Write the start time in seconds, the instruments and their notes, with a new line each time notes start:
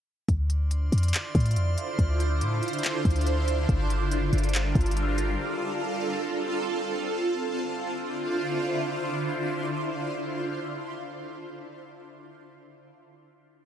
0.28 808-style bass D2, ambient pad D3 D4 E4 F4 C5, synth texture D5 C6 F6, kick, closed hi-hat
0.50 closed hi-hat
0.71 closed hi-hat
0.92 808-style bass F2, closed hi-hat
0.98 closed hi-hat
1.03 closed hi-hat
1.08 closed hi-hat
1.14 clap, closed hi-hat
1.35 808-style bass A2, kick, closed hi-hat
1.40 closed hi-hat
1.46 closed hi-hat
1.51 closed hi-hat
1.56 808-style bass F2, closed hi-hat
1.78 closed hi-hat
1.99 808-style bass D2, kick, closed hi-hat
2.20 closed hi-hat
2.41 808-style bass A2, closed hi-hat
2.63 closed hi-hat
2.68 closed hi-hat
2.73 closed hi-hat
2.79 closed hi-hat
2.84 clap, closed hi-hat
3.05 808-style bass D2, kick, closed hi-hat
3.10 closed hi-hat
3.16 closed hi-hat
3.21 closed hi-hat
3.27 closed hi-hat
3.48 closed hi-hat
3.69 808-style bass G1, ambient pad G3 F4 A4 A#4, kick, closed hi-hat
3.90 closed hi-hat
4.11 closed hi-hat
4.33 808-style bass G1, closed hi-hat
4.38 closed hi-hat
4.43 closed hi-hat
4.49 closed hi-hat
4.54 clap, closed hi-hat
4.75 808-style bass G1, kick, closed hi-hat
4.81 closed hi-hat
4.86 closed hi-hat
4.91 closed hi-hat
4.97 closed hi-hat
5.18 closed hi-hat
5.39 ambient pad C4
7.09 ambient pad D3 D4 E4 F4 C5